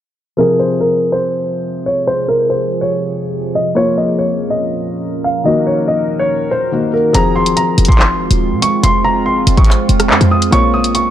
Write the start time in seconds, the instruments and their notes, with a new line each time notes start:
0.37 ambient pad F2 C3 F3 G#4, felt piano C3 F3 G#4, grand piano A#4
0.59 grand piano C5
0.81 grand piano A#4
1.12 grand piano C5
1.86 grand piano C#5
2.07 grand piano C5
2.28 grand piano A#4
2.50 grand piano C5
2.81 grand piano C#5
3.55 grand piano D#5
3.75 felt piano A#3 F4 C#5, ambient pad A#4, grand piano C#5
3.98 grand piano D#5
4.19 grand piano C#5
4.50 grand piano D#5
5.24 grand piano F5
5.44 felt piano D#3 A#3 F#4, grand piano D#5
5.67 grand piano C#5
5.88 grand piano D#5
6.19 grand piano C#5
6.51 grand piano C5
6.72 felt piano D#3 A#3 F#4
6.94 grand piano A#4
7.13 808-style bass F1, felt piano F3 C4 G#4, ambient pad G#3 C4 F4, grand piano A#5, closed hi-hat
7.36 grand piano C6
7.46 closed hi-hat
7.57 grand piano A#5, closed hi-hat
7.78 808-style bass F1, closed hi-hat
7.85 grand piano C6, kick, closed hi-hat
7.92 closed hi-hat
7.99 clap
8.31 808-style bass D#1, closed hi-hat
8.52 808-style bass C3
8.62 grand piano C#6, closed hi-hat
8.83 808-style bass F1, grand piano C6, closed hi-hat
9.04 grand piano A#5
9.26 808-style bass G#1, grand piano C6
9.36 808-style bass F1
9.47 808-style bass F1, closed hi-hat
9.57 grand piano C#6, kick, closed hi-hat
9.65 clap, closed hi-hat
9.72 closed hi-hat
9.89 808-style bass F1, closed hi-hat
10.00 cross-stick, closed hi-hat
10.10 808-style bass G#2, clap
10.21 808-style bass F2, closed hi-hat
10.31 grand piano D#6
10.42 closed hi-hat
10.51 808-style bass A#1, felt piano A#3 F4 C#5, grand piano C#6, closed hi-hat
10.74 grand piano D#6
10.84 closed hi-hat
10.95 grand piano C#6, closed hi-hat